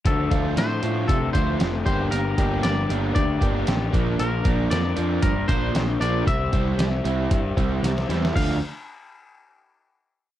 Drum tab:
CC |----------------|----------------|----------------|----------------|
HH |x-x-x-x-x-x-x-x-|x-x-x-x-x-x-x-x-|x-x-x-x-x-x-x-x-|x-x-x-x-x-x-x-x-|
SD |----o-------o---|----o-------o---|----o-------o---|----o-------oooo|
BD |o-o-----o-o---o-|--o-----o-o---o-|--o-----o-o-----|o-o-----o-o-----|

CC |x---------------|
HH |----------------|
SD |----------------|
BD |o---------------|